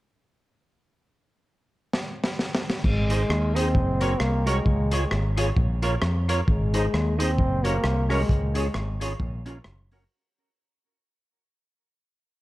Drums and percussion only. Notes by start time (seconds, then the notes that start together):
1.93 snare
2.24 snare
2.39 snare
2.55 snare
2.70 snare
2.84 kick, crash
3.10 closed hi-hat
3.30 cross-stick
3.56 closed hi-hat
3.75 kick
4.01 closed hi-hat
4.20 cross-stick
4.47 closed hi-hat
4.66 kick
4.91 closed hi-hat
5.11 cross-stick
5.38 closed hi-hat
5.57 kick
5.83 closed hi-hat
6.02 cross-stick
6.29 closed hi-hat
6.48 kick
6.74 closed hi-hat
6.94 cross-stick
7.20 closed hi-hat
7.38 kick
7.65 closed hi-hat
7.84 cross-stick
8.10 cross-stick, open hi-hat
8.29 kick, hi-hat pedal
8.55 closed hi-hat
8.74 cross-stick
9.01 closed hi-hat
9.20 kick
9.46 closed hi-hat
9.64 cross-stick
9.91 open hi-hat